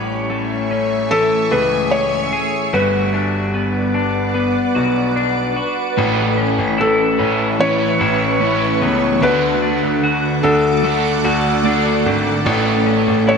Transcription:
Already playing: A1 A2 A3 C#4 C#5 E5 G#5 C#6
0.30 A3
0.71 C#4
1.11 E3 A4
1.51 C#2 G#4 B4
1.91 C#4 C#5
2.33 G#4
2.73 G1 G3 F#4 B4 D5 F#5 D6
3.14 D4
3.54 B3
3.94 D4
4.34 B3
4.75 B1 F#4
5.16 D4
5.56 F#4
5.97 A1 A2 A3 C#4 E4 B4 E5 A5 C#6
6.37 C#4
6.58 A1
6.68 B6
6.78 E4 A4
7.19 A1 C#4 E4 B4
7.23 C#4
7.59 E3 A3 C#4 E4 C#5
7.64 B4
8.00 A1 E4
8.40 A3 C#4 E4
8.44 B4
8.81 C#2 B3
9.20 D2 D3 A3 D4 A4 B4 F#5
9.24 F#4 A4 D5 D6
9.62 D4
9.83 D2
10.03 F#4
10.43 D2 D4 A4
10.83 A3 D4 F#4
10.88 A4
11.24 D2 F#4
11.64 A3 D4 F#4
11.69 A4
12.06 G#1 A3
12.45 A1 A2 A3 C#4 E4 B4 C#5 E5 B5
12.86 C#4
13.08 A1
13.27 E4 C#5

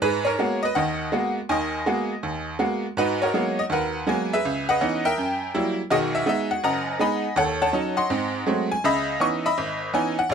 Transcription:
0.02 G#2 G#4 B4
0.25 A#4 C#5
0.39 G#3 A#3 B3 F#4
0.63 B4 D#5
0.75 D#2 D#3 D#5 F#5
1.12 G#3 A#3 B3 F#4
1.49 D#2 D#3 D#5 G#5
1.86 G#3 A#3 B3 F#4
2.23 D#2
2.59 G#3 A#3 B3 F#4
2.97 G#2 D#4 F#4 B4
3.22 F#4 A#4 C#5
3.34 F#3 G#3 A#3 B3
3.59 D#5
3.70 D#2 A#4 B4 F#5
4.07 F#3 G#3 A#3 B3 G#5
4.33 G#4 B4 E5
4.45 C#2
4.69 B4 D#5 F#5
4.81 E3 B3 C#4 D#4
5.05 A#4 E5 G5
5.18 F#2
5.54 F#3 G3 A#3 E4
5.90 B1 D#3 F#4 G#4 D#5
6.15 E5
6.26 G#3 B3 D#4 E5
6.51 F#5
6.64 F#1 F#2 D#5 F#5 A#5
7.00 G#3 B3 D#4 D#5 G#5 B5
7.36 D#2 A4 C#5 F#5
7.62 C#5 F#5 A5
7.73 F#3 C#4 D#4
7.97 D#5 F#5 C6
8.10 G#2 C4
8.46 F#3 G#3 A3 C4
8.72 G#5
8.84 C#2 C#3 D#5 E5 B5
9.20 E3 B3 C#4 D#4 C#6
9.46 D#5 E5 B5
9.58 G#1
9.94 E3 B3 C#4 D#4 G#5
10.19 F#5
10.29 A#1

